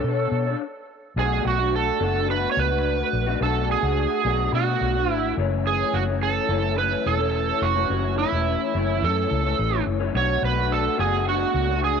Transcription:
Already playing: A4
0.04 B2 B3 D4 A4 C#5
0.31 B2
0.46 D4 A4 C#5
1.16 B1 B2 A3 D4 F#4 G#4
1.45 B1 F#4
1.58 A3 D4 F#4
1.76 A4
2.00 F#1 B2 A3 D4 F#4
2.27 B2 A3 D4 F#4 B4
2.52 C#5
2.57 C#2 B4
2.70 A3 D4 F#4
3.13 A#1
3.26 B2 A3 D4 F#4
3.40 B1 B2 A3 D4 F#4 A4
3.72 G#4
3.83 C#2 A3 D4 F#4
4.25 B1 B2 A3 D4 F#4
4.52 B2 A3 D4 F#4
4.81 B1
4.94 A3 D4 F#4
5.09 G#1 E4
5.36 F#1 F#2 E3 A3 C#4
5.67 G#4
5.93 F#1 F#4
6.07 E3 A3 C#4
6.23 A4
6.48 F#1 F#2 E3 A3 C#4
6.76 F#2 E3 A3 C#4 B4
7.06 E1 A4
7.19 E3 A3 C#4
7.62 F1 F#4
7.75 F#2 E3 A3 C#4
7.89 F#1 F#2 E3 A3 C#4
8.19 E4
8.32 E1 E3 A3 C#4
8.74 F#1 F#2 E3 A3 C#4
9.01 F#2 E3 A3 C#4 A4
9.31 C#2
9.43 E3 A3 C#4
9.59 A1
9.86 F#1
10.00 F#2 E3 A3 C#4
10.14 B1 B2 A3 D4 F#4 C#5
10.42 B1 B4
10.56 A3 D4 F#4
10.72 A4
10.97 F#1 B2 A3 D4 F#4 G#4
11.25 B2 A3 D4 F#4
11.54 C#2
11.68 A3 D4 F#4
11.84 G#4

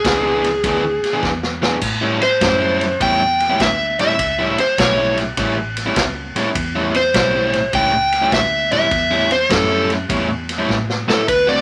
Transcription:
Already playing: G#4
0.05 C#2 E3 B3 D4 G#4, kick, snare, ride
0.24 E3 B3 D4 G#4
0.44 snare, ride
0.64 D2 E3 B3 D4 G#4, kick, snare, ride
0.84 muted overdriven electric guitar stroke
1.03 muted fingered electric bass stroke, snare, ride
1.13 E3 B3 D4 G#4
1.23 E2, kick, snare
1.43 snare
1.62 E3 B3 D4 G#4, snare
1.81 A2, kick, snare, crash
2.01 A2 G3 C#4 E4
2.21 C5, muted overdriven electric guitar stroke, snare, ride
2.41 F#2 A2 G3 C#4 E4, kick, snare, ride
2.61 A2 G3 C#4 E4
2.81 snare, ride
3.00 E2 A2 G3 C#4 E4 G5, kick, ride
3.21 muted overdriven electric guitar stroke
3.40 snare, ride
3.50 A2 G3 C#4 E4
3.60 D2 E5, kick, snare, ride
3.99 A2 G3 C#4 E4 E5, snare, ride
4.19 C#2, kick, ride
4.39 A2 G3 C#4 E4
4.58 C5, muted overdriven electric guitar stroke, snare, ride
4.78 B1 A2 G3 C#4 E4 C#5, kick, snare, ride
4.98 A2 G3 C#4 E4
5.17 snare, ride
5.37 A1 A2 G3 C#4 E4, kick, snare, ride
5.57 muted overdriven electric guitar stroke
5.77 snare, ride
5.86 A2 G3 C#4 E4
5.96 C#2, kick, snare, ride
6.35 A2 G3 C#4 E4, muted fingered electric bass stroke, snare, ride
6.55 E2, kick, ride
6.76 A2 G3 C#4 E4
6.94 C5, muted overdriven electric guitar stroke, snare, ride
7.14 B1 A2 G3 C#4 E4, kick, snare, ride
7.34 A2 G3 C#4 E4
7.53 snare, ride
7.73 C#2 A2 G3 C#4 E4 G5, kick, ride
7.93 muted overdriven electric guitar stroke
8.12 snare, ride
8.22 A2 G3 C#4 E4
8.32 D2 E5, kick, snare, ride
8.72 A2 G3 C#4 E4 E5, snare, ride
8.91 E2, kick, snare, ride
9.11 A2 G3 C#4 E4
9.30 C5, muted overdriven electric guitar stroke, snare, ride
9.50 F#2 A2 G3 C#4 E4 A4, kick, snare, ride
9.69 A2 G3 C#4 E4
9.90 snare, ride
10.09 E2 A2 G3 C#4 E4, kick, ride
10.29 muted overdriven electric guitar stroke
10.49 snare, ride
10.58 A2 G3 C#4 E4
10.69 A2, kick, snare
10.90 snare
11.08 A2 G3 C#4 E4 A4, muted fingered electric bass stroke, snare
11.28 D2 B4, kick, ride
11.47 D3 A3 C4 F#4 D5

